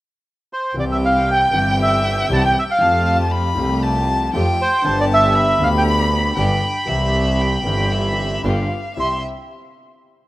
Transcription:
0.53 0.76 C5 soft
0.74 1.49 C2 medium
0.74 1.50 C2 medium
0.74 1.50 C3 medium
0.74 1.49 E3 medium
0.74 1.49 G3 soft
0.74 1.49 C4 medium
0.74 1.50 C4 soft
0.74 1.50 E4 medium
0.74 1.50 G4 medium
0.74 2.82 G5 medium
0.78 1.51 G4 soft
0.78 0.85 D5 medium
0.92 0.97 E5 medium
1.05 1.30 F5 medium
1.31 1.77 G5 medium
1.51 2.26 G1 medium
1.51 2.26 G2 medium
1.51 2.25 E3 medium
1.51 2.25 G3 soft
1.51 2.26 C4 medium
1.51 2.26 C4 soft
1.51 2.26 E4 medium
1.51 2.26 G4 medium
1.51 2.27 G4 medium
1.82 2.28 E5 medium
2.29 2.51 C2 medium
2.29 2.51 C3 medium
2.29 2.51 E3 medium
2.29 2.51 G3 medium
2.29 2.51 C4 medium
2.29 2.51 C4 soft
2.29 2.51 E4 medium
2.29 2.51 G4 medium
2.33 2.44 A5 medium
2.46 2.56 G5 medium
2.59 2.64 E5 medium
2.71 3.17 F5 medium
2.78 3.53 F2 medium
2.78 3.54 F2 medium
2.78 2.80 F3 medium
2.78 3.54 F3 medium
2.78 3.53 A3 medium
2.78 3.54 C4 soft
2.78 3.53 F4 medium
2.78 3.54 G4 medium
2.78 3.33 A5 medium
2.83 3.55 G4 medium
3.32 3.84 B5 medium
3.55 4.30 C2 medium
3.55 4.30 C3 medium
3.55 4.29 F3 medium
3.55 4.30 A3 medium
3.55 4.30 C4 medium
3.55 4.30 F4 medium
3.55 4.30 G4 medium
3.59 4.31 G4 medium
3.83 4.34 A5 medium
4.33 4.55 F2 medium
4.33 4.55 F3 medium
4.33 4.55 A3 medium
4.33 4.55 C4 medium
4.33 4.55 F4 medium
4.33 4.55 G4 medium
4.33 4.86 G5 medium
4.61 4.99 C5 medium
4.82 5.57 G1 medium
4.82 5.57 G2 medium
4.82 5.56 D3 medium
4.82 5.57 G3 medium
4.82 5.57 B3 medium
4.82 5.57 B3 soft
4.82 5.57 D4 medium
4.82 5.57 G4 medium
4.82 5.37 A5 medium
4.87 5.58 G4 medium
5.00 5.05 D5 medium
5.14 5.64 E5 medium
5.36 6.36 B5 medium
5.58 6.33 D2 medium
5.58 6.34 D2 medium
5.58 6.33 D3 medium
5.58 6.33 G3 soft
5.58 6.33 B3 medium
5.58 6.34 B3 medium
5.58 6.33 D4 medium
5.58 6.33 G4 medium
5.58 6.34 G4 medium
5.63 5.69 F5 medium
5.78 5.82 G5 medium
5.89 8.42 B5 medium
6.36 6.59 G1 medium
6.36 6.58 G2 medium
6.36 6.58 D3 medium
6.36 6.59 G3 soft
6.36 6.59 B3 medium
6.36 6.59 B3 soft
6.36 6.59 D4 medium
6.36 6.58 G4 medium
6.36 6.59 G4 medium
6.36 6.90 G5 medium
6.86 7.62 C2 medium
6.86 7.62 C3 medium
6.86 7.61 E3 medium
6.86 7.61 G3 soft
6.86 7.62 C4 medium
6.86 7.62 C4 soft
6.86 7.62 E4 medium
6.86 7.62 G4 medium
6.86 7.42 E5 medium
6.90 7.63 G4 medium
7.41 7.93 G5 medium
7.64 8.40 G1 medium
7.64 8.41 G1 medium
7.64 8.41 G2 medium
7.64 8.40 E3 medium
7.64 8.40 G3 medium
7.64 8.40 C4 medium
7.64 8.41 C4 medium
7.64 8.40 E4 medium
7.64 8.40 G4 medium
7.68 8.42 G4 medium
7.92 8.46 E5 medium
8.44 8.66 G1 medium
8.44 8.66 G2 medium
8.44 8.67 D3 medium
8.44 8.66 G3 soft
8.44 8.66 B3 medium
8.44 8.66 B3 soft
8.44 8.67 F4 medium
8.44 8.67 G4 medium
8.44 8.96 F5 medium
8.97 9.19 C2 soft
8.97 9.19 G3 soft
8.97 9.19 C4 soft
8.97 9.19 E4 soft
8.97 9.19 G4 soft
8.97 9.21 E5 soft
8.97 9.23 C6 medium

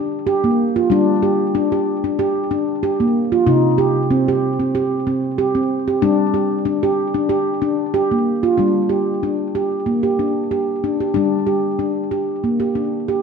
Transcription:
0.00 0.87 G3 medium
0.00 0.27 D4 medium
0.27 0.44 G4 medium
0.44 0.76 A#3 medium
0.76 0.91 F4 medium
0.90 3.42 G3 medium
0.90 1.23 D4 medium
1.23 1.55 G4 medium
1.55 1.72 D4 medium
1.72 2.04 G4 medium
2.04 2.19 D4 medium
2.19 2.51 G4 medium
2.51 2.83 D4 medium
2.83 3.00 G4 medium
3.00 3.32 A#3 medium
3.32 3.47 F4 medium
3.47 5.99 C3 medium
3.47 3.79 D#4 medium
3.78 4.10 G4 medium
4.11 4.28 C4 medium
4.28 4.60 G4 medium
4.60 4.74 C4 medium
4.75 5.07 G4 medium
5.07 5.39 C4 medium
5.38 5.55 G4 medium
5.55 5.87 C4 medium
5.88 6.03 G4 medium
6.02 8.55 G3 medium
6.02 6.34 D4 medium
6.34 6.66 G4 medium
6.65 6.83 D4 medium
6.83 7.15 G4 medium
7.14 7.30 D4 medium
7.29 7.62 G4 medium
7.62 7.94 D4 medium
7.94 8.11 G4 medium
8.11 8.44 A#3 medium
8.43 8.58 F4 medium
8.57 11.12 G3 medium
8.57 8.90 D4 medium
8.89 9.22 G4 medium
9.23 9.55 D4 medium
9.55 9.87 G4 medium
9.86 10.04 A#3 medium
10.03 10.19 G4 medium
10.19 10.51 D4 medium
10.51 10.83 G4 medium
10.84 11.01 D4 medium
11.01 11.16 G4 medium
11.14 13.22 G3 medium
11.14 11.47 D4 medium
11.47 11.79 G4 medium
11.79 12.12 D4 medium
12.11 12.44 G4 medium
12.44 12.61 A#3 medium
12.60 12.76 G4 medium
12.75 13.08 D4 medium
13.08 13.22 G4 medium

